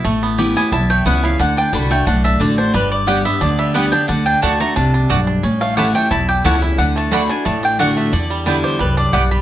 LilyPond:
<<
  \new Staff \with { instrumentName = "Mandolin" } { \time 4/4 \key d \mixolydian \tempo 4 = 178 r4. aes''8 a''8 g''8 fis''8 f''8 | fis''8 g''8 b''8 g''8 fis''8 e''8 d''8 c''8 | b'8 d''8 fis''8 e''8 d''8 e''8 fis''8 g''8 | fis''8 g''8 a''8 bes''8 a''4. r8 |
r8 f''8 fis''8 g''8 a''8 g''8 fis''8 e''8 | fis''8 a''8 b''8 aes''8 a''8 g''8 fis''8 e''8 | d''4. c''8 b'8 d''8 fis''8 b''8 | }
  \new Staff \with { instrumentName = "Mandolin" } { \time 4/4 \key d \mixolydian r1 | r1 | r4 <b g' d'' g''>16 r4. r16 <b g' d'' g''>16 r8. | r4 <a fis' d'' fis''>16 r4. r16 <a fis' d'' fis''>16 r8. |
r4 <a e' cis'' a''>16 r4. r16 <a e' cis'' a''>16 r8. | r4 <a fis' d'' fis''>16 r4. r16 <a fis' d'' fis''>16 r8. | r4 <b e' d'' g''>16 r4. r16 <b e' d'' g''>16 r8. | }
  \new Staff \with { instrumentName = "Five-string banjo" } { \time 4/4 \key d \mixolydian a8 b8 g'8 b8 e'8 a8 b8 e'8 | d'8 d'8 d'8 a8 d'8 d'8 d'8 d'8 | g4 g'8 b8 d'8 g8 b8 d'8 | d'8 d'8 d'8 a8 d'8 d'8 d'8 d'8 |
cis'8 a8 g'8 a8 e'8 g'8 cis'8 e'8 | d8 a8 d'8 d'8 a8 d'8 d'8 a8 | d8 g8 d'8 g'8 g8 d'8 g'8 g8 | }
  \new Staff \with { instrumentName = "Steel-string acoustic guitar" } { \time 4/4 \key d \mixolydian << { r4 <e b cis' e'>8 <cis' e'>8 r4 <e b cis' e'>8 <cis' e'>8 | r4 <d a d' fis'>8 <d' fis'>8 r4 <d a d' fis'>8 <d' fis'>8 | r4 <g b d' g'>8 <d' g'>8 r4 <g b d' g'>8 <d' g'>8 | r4 <d a d' fis'>8 <d' fis'>8 r2 |
r4 <e a cis' e'>8 <cis' e'>8 r4 <e a cis' e'>8 <cis' e'>8 | r4 <d a d' fis'>8 <d' fis'>8 r4 <d a d' fis'>4 | r4 <d g b e'>4 r2 | } \\ { a,2 e,2 | d2 a,2 | g,2 d2 | d2 c4 g,4 |
a,2 e,2 | d2 a,2 | e,2 fis,4 g,4 | } >> }
  \new Staff \with { instrumentName = "Upright bass" } { \clef bass \time 4/4 \key d \mixolydian a,,2 b,,4 cis,4 | d,4 c,4 b,,4 a,,4 | g,,2 d,2 | d,4 d,4 c,4 b,,4 |
a,,2 b,,4 cis,4 | d,2 a,,2 | e,2 c,4 b,,4 | }
>>